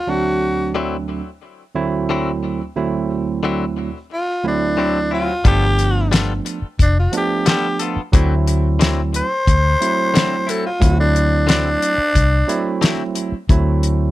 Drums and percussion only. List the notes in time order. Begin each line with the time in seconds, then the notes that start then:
5.45 kick, closed hi-hat
5.79 closed hi-hat
6.13 snare, closed hi-hat
6.46 closed hi-hat
6.79 kick, closed hi-hat
7.13 closed hi-hat
7.46 snare, closed hi-hat
7.79 closed hi-hat
8.13 kick, closed hi-hat
8.48 closed hi-hat
8.81 snare, closed hi-hat
9.14 closed hi-hat
9.47 kick, closed hi-hat
9.82 closed hi-hat
10.15 snare, closed hi-hat
10.49 closed hi-hat
10.82 kick, closed hi-hat
11.16 closed hi-hat
11.49 snare, closed hi-hat
11.82 closed hi-hat
12.15 kick, closed hi-hat
12.49 closed hi-hat
12.82 snare, closed hi-hat
13.15 closed hi-hat
13.49 kick, closed hi-hat
13.83 closed hi-hat